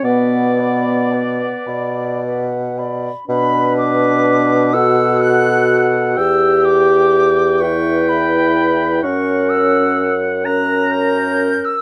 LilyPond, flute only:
\new Staff \with { instrumentName = "Flute" } { \time 6/8 \key b \minor \tempo 4. = 42 fis''8 b''8 fis''8 b''8 fis''8 b''8 | b''8 d'''4 e'''8 fis'''4 | e'''8 d'''4 cis'''8 b''4 | cis'''8 e'''8. r16 fis'''8 g'''8. e'''16 | }